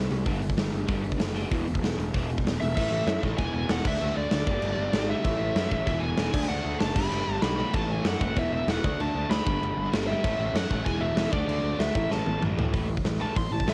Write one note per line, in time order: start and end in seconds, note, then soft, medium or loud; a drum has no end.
0.10 0.22 C2 medium
0.10 0.25 C3 medium
0.10 0.25 G3 medium
0.10 open hi-hat medium
0.26 0.50 G1 medium
0.26 0.40 G2 medium
0.26 0.41 D3 medium
0.26 0.41 G3 loud
0.26 kick loud
0.26 open hi-hat medium
0.41 0.56 G2 medium
0.41 0.56 D3 medium
0.41 open hi-hat medium
0.49 kick medium
0.57 0.69 G1 medium
0.57 0.71 G2 medium
0.57 0.71 D3 medium
0.57 snare loud
0.57 open hi-hat medium
0.72 0.85 G1 medium
0.72 0.86 G2 medium
0.72 0.87 D3 medium
0.72 open hi-hat medium
0.87 1.13 G1 medium
0.87 1.02 G2 loud
0.87 1.02 D3 medium
0.87 1.03 G3 medium
0.87 kick loud
0.87 open hi-hat medium
1.03 1.17 G2 medium
1.03 1.17 D3 medium
1.03 open hi-hat medium
1.12 kick medium
1.18 1.44 F#1 medium
1.18 1.33 G2 medium
1.18 1.33 D3 medium
1.18 snare loud
1.18 open hi-hat medium
1.34 1.50 G2 medium
1.34 1.50 D3 medium
1.34 1.50 G3 loud
1.34 open hi-hat medium
1.51 1.63 E1 medium
1.51 1.64 E2 medium
1.51 1.65 B2 medium
1.51 1.66 E3 medium
1.51 kick loud
1.51 open hi-hat medium
1.65 1.80 E1 medium
1.65 1.80 E2 medium
1.65 1.81 B2 medium
1.65 open hi-hat medium
1.75 kick medium
1.82 1.95 E1 medium
1.82 1.96 E2 medium
1.82 1.97 B2 medium
1.82 snare loud
1.82 open hi-hat medium
1.98 2.10 E1 medium
1.98 2.12 E2 medium
1.98 2.12 B2 medium
1.98 open hi-hat medium
2.13 2.38 E1 medium
2.13 2.28 E2 medium
2.13 2.29 B2 loud
2.13 2.29 E3 loud
2.13 kick loud
2.13 open hi-hat medium
2.30 2.43 E2 medium
2.30 2.44 B2 medium
2.30 open hi-hat medium
2.38 kick medium
2.45 2.57 E1 medium
2.45 2.59 E2 medium
2.45 2.59 B2 medium
2.45 snare loud
2.45 open hi-hat medium
2.61 2.73 E1 medium
2.61 2.75 E2 medium
2.61 2.75 B2 medium
2.61 2.75 E5 medium
2.61 open hi-hat medium
2.76 2.87 A1 medium
2.76 3.06 A2 medium
2.76 3.06 E3 loud
2.76 3.07 A3 loud
2.76 3.20 E5 medium
2.76 kick loud
2.76 crash loud
2.76 crash medium
2.91 3.01 A1 medium
3.07 3.17 F#2 loud
3.07 3.22 A2 medium
3.07 3.22 E3 medium
3.07 3.20 A3 loud
3.07 snare loud
3.07 crash medium
3.21 3.33 A1 medium
3.21 3.38 A2 medium
3.21 3.38 E3 loud
3.21 3.37 A3 medium
3.21 kick loud
3.38 3.49 E1 medium
3.38 3.67 E2 medium
3.38 3.68 B2 loud
3.38 3.69 E3 loud
3.38 3.53 G#5 loud
3.38 kick loud
3.38 crash medium
3.54 3.64 E1 medium
3.54 3.72 G#5 loud
3.69 3.79 E1 medium
3.69 3.84 E2 medium
3.69 3.84 B2 medium
3.69 3.84 E3 loud
3.69 3.86 F#5 loud
3.69 snare loud
3.69 crash medium
3.84 3.95 D2 loud
3.84 4.00 D3 medium
3.84 4.00 A3 loud
3.84 3.99 D4 loud
3.84 4.17 E5 medium
3.84 kick loud
3.84 crash loud
4.00 4.11 D2 medium
4.00 4.31 D3 medium
4.00 4.31 A3 loud
4.00 4.31 D4 loud
4.00 crash medium
4.17 4.27 D2 medium
4.17 5.10 D5 medium
4.31 4.42 D2 loud
4.31 4.47 D3 medium
4.31 4.46 A3 medium
4.31 4.46 D4 medium
4.31 snare loud
4.31 crash medium
4.47 4.57 G1 loud
4.47 4.63 G2 medium
4.47 4.62 D3 loud
4.47 4.62 G3 loud
4.47 kick loud
4.62 4.72 G1 medium
4.62 4.94 G2 medium
4.62 4.93 D3 medium
4.62 4.92 G3 loud
4.62 crash medium
4.77 4.88 G1 medium
4.92 5.13 G#1 medium
4.92 5.08 G2 medium
4.92 5.09 D3 loud
4.92 5.09 G3 loud
4.92 snare loud
4.92 crash medium
5.09 5.24 G2 medium
5.09 5.24 D3 medium
5.09 5.25 G3 medium
5.09 5.85 E5 loud
5.24 5.35 A1 medium
5.24 5.55 A2 medium
5.24 5.56 E3 loud
5.24 5.55 A3 loud
5.24 kick loud
5.24 crash medium
5.39 5.50 A1 medium
5.55 5.65 F#2 loud
5.55 5.70 A2 medium
5.55 5.69 E3 medium
5.55 5.69 A3 medium
5.55 snare loud
5.55 crash medium
5.70 5.82 A1 medium
5.70 5.86 A2 medium
5.70 5.86 E3 medium
5.70 5.85 A3 loud
5.70 kick medium
5.86 5.97 E1 medium
5.86 6.16 E2 loud
5.86 6.16 B2 loud
5.86 6.17 E3 loud
5.86 6.03 E5 loud
5.86 kick loud
5.86 crash medium
6.00 6.13 E1 medium
6.00 6.45 G#5 loud
6.17 6.28 E1 medium
6.17 6.32 E2 medium
6.17 6.31 B2 medium
6.17 6.31 E3 loud
6.17 snare loud
6.17 crash medium
6.31 6.44 D2 loud
6.31 6.48 D3 loud
6.31 6.47 A3 loud
6.31 6.47 D4 loud
6.31 kick loud
6.31 crash loud
6.48 6.60 D2 medium
6.48 6.79 D3 medium
6.48 6.79 A3 loud
6.48 6.78 D4 loud
6.48 6.79 F#5 loud
6.48 crash medium
6.65 6.75 D2 medium
6.80 6.91 F#1 loud
6.80 6.95 D3 medium
6.80 6.95 A3 medium
6.80 6.95 D4 medium
6.80 6.96 A5 loud
6.80 snare loud
6.80 crash medium
6.95 7.06 G1 medium
6.95 7.10 G2 medium
6.95 7.09 D3 medium
6.95 7.10 G3 loud
6.95 7.42 B5 loud
6.95 kick loud
6.95 crash loud
7.11 7.21 G1 medium
7.11 7.42 G2 medium
7.11 7.42 D3 loud
7.11 7.42 G3 loud
7.11 crash medium
7.27 7.37 G1 medium
7.42 7.63 B1 loud
7.42 7.55 G2 medium
7.42 7.56 D3 medium
7.42 7.56 G3 medium
7.42 7.75 B5 loud
7.42 snare loud
7.42 crash medium
7.56 7.72 G2 medium
7.56 7.72 D3 medium
7.56 7.73 G3 medium
7.73 7.84 A1 loud
7.73 8.02 A2 medium
7.73 8.02 E3 loud
7.73 8.03 A3 loud
7.73 7.91 A5 loud
7.73 kick loud
7.73 crash medium
7.88 7.99 A1 medium
7.88 8.07 G#5 loud
8.04 8.15 F#2 loud
8.04 8.19 A2 medium
8.04 8.19 E3 loud
8.04 8.18 A3 medium
8.04 8.38 F#5 loud
8.04 snare loud
8.04 crash medium
8.19 8.31 F#1 loud
8.19 8.35 A2 medium
8.19 8.35 E3 medium
8.19 8.35 A3 medium
8.19 kick loud
8.35 8.46 E1 medium
8.35 8.66 E2 medium
8.35 8.67 B2 loud
8.35 8.67 E3 loud
8.35 kick loud
8.35 crash medium
8.39 8.52 E5 loud
8.51 8.61 E1 medium
8.51 8.69 E5 loud
8.67 8.77 E1 medium
8.67 8.82 E2 medium
8.67 8.83 B2 medium
8.67 8.83 E3 medium
8.67 9.01 F#5 loud
8.67 snare loud
8.67 crash medium
8.83 8.94 D2 loud
8.83 9.00 D3 loud
8.83 9.00 A3 loud
8.83 8.99 D4 loud
8.83 kick loud
8.99 9.09 D2 medium
8.99 9.31 D3 medium
8.99 9.30 A3 loud
8.99 9.29 D4 loud
8.99 9.30 A5 loud
8.99 crash medium
9.15 9.25 D2 medium
9.29 9.40 D2 loud
9.29 9.45 D3 medium
9.29 9.45 A3 medium
9.29 9.45 D4 loud
9.29 9.88 B5 loud
9.29 snare loud
9.29 crash medium
9.46 9.57 G1 loud
9.46 9.62 G2 loud
9.46 9.62 D3 loud
9.46 9.61 G3 loud
9.46 kick loud
9.61 9.71 G1 medium
9.61 9.92 G2 medium
9.61 9.92 D3 loud
9.61 9.91 G3 loud
9.61 crash medium
9.77 9.87 G1 medium
9.92 10.12 G1 medium
9.92 10.08 G2 medium
9.92 10.08 D3 medium
9.92 10.09 G3 medium
9.92 snare loud
9.92 crash medium
10.07 10.23 G2 medium
10.07 10.23 D3 medium
10.07 10.24 G3 loud
10.07 10.45 E5 loud
10.24 10.34 A1 medium
10.24 10.53 A2 loud
10.24 10.54 E3 loud
10.24 10.54 A3 loud
10.24 kick loud
10.24 crash medium
10.39 10.49 A1 medium
10.46 10.56 E5 medium
10.54 10.64 F#2 loud
10.54 10.70 A2 medium
10.54 10.70 E3 medium
10.54 10.69 A3 medium
10.54 10.85 F#5 loud
10.54 snare loud
10.54 crash medium
10.70 10.80 A1 loud
10.70 10.85 A2 medium
10.70 10.85 E3 medium
10.70 10.85 A3 loud
10.70 kick medium
10.85 10.96 E1 medium
10.85 11.17 E2 loud
10.85 11.17 B2 loud
10.85 11.17 E3 loud
10.85 11.02 G#5 loud
10.85 kick loud
10.85 crash medium
11.00 11.11 E1 medium
11.00 11.32 E5 medium
11.15 11.25 E1 medium
11.15 11.32 E2 medium
11.15 11.32 B2 medium
11.15 11.32 E3 loud
11.15 snare loud
11.15 crash medium
11.32 11.43 D2 medium
11.32 11.48 D3 medium
11.32 11.48 A3 loud
11.32 11.47 D4 loud
11.32 11.81 D5 medium
11.32 kick loud
11.47 11.58 D2 medium
11.47 11.79 D3 loud
11.47 11.78 A3 loud
11.47 11.77 D4 loud
11.47 crash medium
11.63 11.73 D2 medium
11.78 11.89 D2 loud
11.78 11.94 D3 medium
11.78 11.94 A3 medium
11.78 11.93 D4 medium
11.78 12.11 E5 loud
11.78 snare loud
11.78 crash medium
11.95 12.05 A1 loud
11.95 12.10 A2 medium
11.95 12.10 E3 loud
11.95 12.09 A3 loud
11.95 kick loud
12.10 12.20 A1 medium
12.10 12.41 A2 medium
12.10 12.40 E3 medium
12.10 12.40 A3 loud
12.10 12.40 A5 medium
12.10 snare medium
12.26 12.36 A1 medium
12.26 high tom medium
12.41 12.62 A1 medium
12.41 12.55 A2 medium
12.41 12.55 E3 medium
12.41 12.56 A3 medium
12.41 mid tom loud
12.56 12.71 A2 medium
12.56 12.72 E3 medium
12.56 12.72 A3 medium
12.56 floor tom loud
12.72 12.93 A1 medium
12.72 12.87 A2 medium
12.72 12.88 E3 medium
12.72 12.88 A3 medium
12.72 kick loud
12.72 open hi-hat medium
12.89 13.03 A2 medium
12.89 13.03 E3 medium
12.97 kick medium
13.04 13.24 A1 medium
13.04 13.18 A2 medium
13.04 13.18 E3 medium
13.04 snare loud
13.04 open hi-hat medium
13.19 13.34 A2 medium
13.19 13.35 E3 loud
13.19 13.35 A3 loud
13.19 13.36 A5 loud
13.36 13.46 A1 medium
13.36 13.50 A2 medium
13.36 13.50 E3 medium
13.36 13.52 C6 medium
13.36 kick loud
13.36 open hi-hat medium
13.51 13.61 A1 medium
13.51 13.66 A2 medium
13.51 13.66 E3 medium
13.51 13.67 A5 medium
13.60 kick medium
13.66 13.74 A1 medium
13.66 13.74 A2 medium
13.66 13.74 E3 loud
13.66 13.74 A3 medium
13.66 13.74 E5 medium
13.66 snare loud
13.66 open hi-hat medium